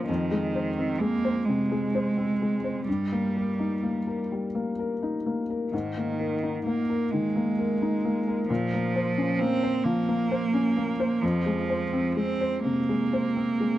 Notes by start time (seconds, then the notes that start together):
Already playing: F3 A#3 C#4 C5
0.08 F2 D#3
0.31 G#3
0.55 C5
0.78 C4
1.00 G#3 A#3
1.25 C5
1.45 C3 G#3
1.72 G#3
1.95 C5
2.17 C4
2.42 G#3
2.64 C5
2.87 G2 G3
3.12 A#3
3.37 A#4
3.59 D#4
3.83 A#3
4.07 A#4
4.32 G3
4.55 A#3
4.79 A#4
5.03 D#4
5.26 A#3
5.50 A#4
5.72 G#2 D#3
5.97 A#3
6.20 A#4
6.43 D#4
6.66 A#3
6.90 A#4
7.11 D#3 G#3
7.36 A#3
7.59 A#4
7.82 D#4
8.05 A#3
8.28 A#4
8.49 A#2 F3
8.73 A#3
8.96 C5
9.18 C#4
9.39 A#3 C4
9.63 C5
9.84 F3 A#3
10.08 A#3
10.31 C5
10.54 C#4
10.77 A#3
11.00 C5
11.22 F2 F3
11.46 G#3
11.70 C5
11.93 C4
12.15 G#3 C4
12.41 C5
12.63 C3 A#3
12.89 G#3
13.13 C5
13.36 C4
13.60 G#3